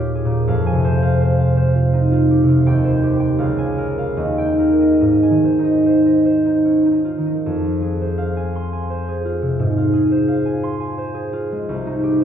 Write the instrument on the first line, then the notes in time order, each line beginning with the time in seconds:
harp
Already playing: D#2 A#2 G4 C#5 G5 A#5
0.15 G#4
0.25 A#2
0.30 G4
0.48 F2 F5
0.67 G#5
0.72 C3
0.84 C5
1.02 F5
1.21 C5
1.40 F5
1.57 C5
1.75 F4
1.93 D#4
2.12 F4
2.31 G4
2.44 C3
2.48 F4
2.66 D#2 G5
2.84 C5
3.03 G4
3.20 G5
3.38 C#2 F5
3.58 G#5
3.78 A#4
3.98 F5
4.17 D#2 D#5
4.38 G5
4.45 D#4
4.59 A#4
4.80 D#5
5.01 G#2 D#5
5.23 G#5
5.30 D#3
5.44 C5
5.59 D#4
5.64 D#5
5.86 C5
6.06 D#5
6.25 C5
6.45 D#4
6.65 C#4
6.85 D#4
6.92 D#4
7.05 F4
7.18 D#3
7.26 D#4
7.46 F2
7.64 F4
7.82 G#4
8.01 C5
8.18 F5
8.37 G#5
8.55 C6
8.73 G#5
8.90 C5
9.09 G#4
9.25 F4
9.42 C3
9.59 G#2
9.77 F4
9.93 G#4
10.12 C5
10.28 F5
10.45 G#5
10.63 C6
10.80 G#5
10.98 C5
11.14 G#4
11.33 F4
11.52 G#3
11.69 C2
11.86 D#4
12.04 G4
12.21 C5